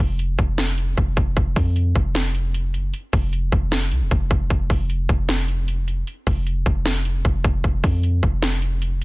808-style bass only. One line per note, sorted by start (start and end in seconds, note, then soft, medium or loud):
0.00 0.37 F1 loud
0.39 0.95 F1 loud
0.97 1.16 F1 loud
1.17 1.36 F1 loud
1.37 1.55 F1 loud
1.56 1.94 F2 loud
1.96 2.75 F1 loud
2.74 2.93 F#1 loud
3.13 3.51 F1 loud
3.52 3.93 F1 loud
3.92 4.03 C2 medium
4.01 4.11 F1 loud
4.11 4.30 F1 loud
4.31 4.50 F1 loud
4.50 4.69 F1 loud
4.70 5.08 F1 loud
5.09 6.03 F1 loud
6.27 6.64 F1 loud
6.66 7.23 F1 loud
7.25 7.44 F1 loud
7.44 7.63 F1 loud
7.64 7.83 F1 loud
7.84 8.21 F2 loud
8.23 9.03 F1 loud